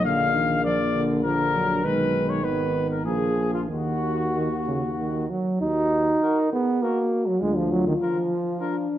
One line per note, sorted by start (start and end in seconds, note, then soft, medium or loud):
0.04 1.84 A#1 medium
0.04 0.36 D3 medium
0.04 1.24 A#3 soft
0.04 0.63 F5 medium
0.34 0.64 D#3 soft
0.63 0.78 F3 soft
0.63 1.02 D5 medium
0.63 1.03 D5 medium
0.94 1.24 D3 medium
1.24 1.85 D3 soft
1.24 1.56 F3 medium
1.24 1.85 A#4 medium
1.24 1.86 A#4 medium
1.54 1.85 F#3 soft
1.83 2.46 B1 medium
1.83 3.07 D#3 medium
1.83 2.45 G#3 soft
1.83 2.28 B4 medium
1.83 2.31 B4 medium
2.28 2.44 C#5 soft
2.28 2.46 C#5 medium
2.43 3.08 G#1 soft
2.43 3.07 B3 soft
2.43 2.89 B4 soft
2.43 2.90 B4 medium
2.90 3.05 A#4 soft
3.05 3.70 A#1 soft
3.05 3.72 F3 soft
3.05 3.69 A#3 soft
3.05 3.53 G#4 medium
3.05 3.53 G#4 soft
3.54 3.61 F4 soft
3.70 5.27 D#2 soft
3.70 4.28 D#3 soft
3.70 5.27 A#3 soft
3.70 5.27 F#4 medium
4.35 4.49 D#3 soft
4.67 4.81 C#3 soft
4.98 5.32 D#3 soft
5.30 5.61 F#3 soft
5.61 6.13 D#2 soft
5.61 6.48 D#4 medium
5.61 6.18 F#4 soft
6.22 6.39 F#4 soft
6.22 6.38 A#4 soft
6.22 6.51 A#4 soft
6.52 6.84 B3 medium
6.52 6.83 G#4 soft
6.82 7.29 A#3 medium
6.82 7.43 F#4 soft
6.82 6.99 F#4 soft
6.82 6.99 A#4 soft
7.28 7.43 F#3 medium
7.41 7.91 D2 medium
7.41 7.59 G#3 medium
7.41 8.59 F4 medium
7.57 7.73 F3 medium
7.71 7.86 F#3 medium
7.87 7.94 D#3 soft
8.01 8.88 F3 medium
8.01 8.17 F4 soft
8.01 8.18 A#4 soft
8.60 8.98 D4 medium
8.60 8.77 F4 soft
8.60 8.76 A#4 soft